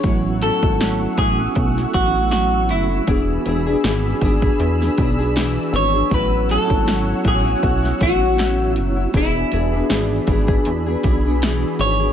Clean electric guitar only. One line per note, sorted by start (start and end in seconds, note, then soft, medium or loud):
0.00 0.42 C#5 loud
0.42 1.18 A4 medium
1.18 1.90 G#4 medium
1.94 2.30 F#4 medium
2.31 2.70 F#4 medium
2.71 4.18 E4 medium
5.76 6.13 C#5 medium
6.14 6.48 B4 medium
6.51 7.27 A4 loud
7.28 8.04 G#4 medium
8.03 8.78 F#4 medium
8.78 9.11 E4 medium
9.17 10.60 E4 medium
10.60 11.39 D4 medium
11.81 12.13 C#5 medium